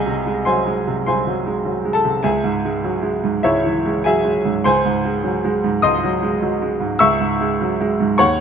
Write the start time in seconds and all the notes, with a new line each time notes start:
Already playing: C2 G#4 D#5 G#5
0.06 C3
0.27 G#3
0.45 F#3 C5 G#5 C6
0.67 G#3
0.87 C3
1.06 C2 C5 G#5 C6
1.27 F#3
1.47 G#3
1.65 F#3
1.85 G#3
1.93 A4 A5
2.04 C3
2.23 C#2 G#4 E5 G#5
2.44 G#2
2.65 G#3
2.84 F#3
3.03 G#3
3.24 G#2
3.43 C#2 E4 C#5 E5
3.65 E3
3.85 G#3
4.04 F#3 G#4 E5 G#5
4.25 G#3
4.45 G#2
4.64 C#2 C5 G#5 C6
4.85 G#2
5.05 G#3
5.24 F#3
5.45 G#3
5.64 G#2
5.82 C#2 D#5 C6 D#6
6.04 F#3
6.23 G#3
6.42 F#3
6.62 G#3
6.80 G#2
6.99 C#2 E5 C#6 E6
7.20 G#2
7.41 G#3
7.61 F#3
7.81 G#3
8.00 G#2
8.18 D#2 C#5 F#5 C#6